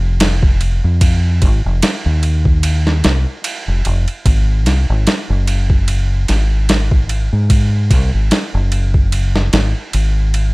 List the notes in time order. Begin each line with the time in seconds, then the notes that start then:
Already playing: F1
0.20 snare, ride
0.43 kick
0.61 ride
0.84 F2
1.01 kick, ride
1.42 G#1, kick, ride
1.65 F1
1.82 snare, ride
2.06 D#2
2.23 ride
2.45 kick
2.63 ride
2.87 snare
3.04 C2, snare, ride
3.44 ride
3.68 F1
3.85 F1, ride
4.08 ride
4.26 G#1, kick, ride
4.66 C2, snare, ride
4.90 G#1
5.07 snare, ride
5.30 F#1
5.47 ride
5.70 kick
5.88 ride
6.28 G#1, snare, ride
6.69 snare, ride
6.91 kick
7.09 ride
7.33 G#2
7.50 kick, ride
7.91 C2, kick, ride
8.14 G#1
8.31 snare, ride
8.54 F#1
8.72 ride
8.94 kick
9.12 ride
9.36 snare
9.53 G#1, snare, ride
9.93 G#1, ride
10.34 ride